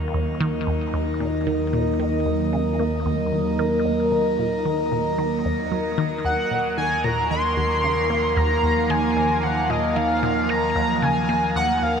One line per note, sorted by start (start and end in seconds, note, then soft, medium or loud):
0.00 6.22 D#2 medium
0.00 12.00 F#3 medium
0.00 12.00 A#3 medium
0.00 6.13 D#4 medium
0.00 12.00 A#4 medium
0.00 7.53 D#5 medium
0.14 0.27 D#2 medium
0.40 0.53 D#3 loud
0.67 0.80 D#2 medium
0.94 1.06 D#2 medium
1.20 1.28 A#2 medium
1.47 1.66 D#3 medium
1.73 1.92 A#2 medium
2.00 2.12 D#3 medium
2.26 2.34 D#2 medium
2.53 2.65 C#3 medium
2.79 2.87 A#3 medium
3.06 3.25 D#2 loud
3.33 3.45 D#2 medium
3.59 3.72 D#3 loud
3.85 3.98 D#2 medium
4.12 4.25 D#2 medium
4.39 4.46 A#2 medium
4.65 4.84 D#3 medium
4.92 5.11 A#2 medium
5.18 5.31 D#3 medium
5.45 5.53 D#2 medium
5.72 5.84 F#3 medium
5.97 6.06 D#3 loud
5.97 12.00 F3 medium
6.25 6.37 D#2 medium
6.25 12.00 D#2 medium
6.25 6.74 F#5 loud
6.51 6.59 A#2 medium
6.78 6.96 D#3 medium
6.78 7.06 G#5 loud
7.04 7.23 A#2 medium
7.04 7.30 A#5 loud
7.31 7.43 D#3 medium
7.31 8.38 C6 loud
7.37 12.00 F5 loud
7.57 7.65 D#2 medium
7.84 7.96 C#3 medium
8.10 8.18 A#3 medium
8.37 8.56 D#2 loud
8.37 8.92 A#5 loud
8.63 8.76 D#2 medium
8.90 9.03 D#3 loud
8.90 9.44 G#5 loud
9.17 9.29 D#2 medium
9.43 9.56 D#2 medium
9.43 9.71 F#5 loud
9.70 9.77 A#2 medium
9.70 9.98 D#5 medium
9.96 10.15 D#3 medium
9.96 10.51 F5 loud
10.23 10.42 A#2 medium
10.49 10.62 D#3 medium
10.49 11.05 A#5 loud
10.76 10.83 D#2 medium
11.02 11.15 C#3 medium
11.02 11.56 G#5 loud
11.29 11.37 A#3 medium
11.55 11.74 D#2 loud
11.55 11.84 F#5 loud
11.82 11.95 D#2 medium
11.82 12.00 F5 medium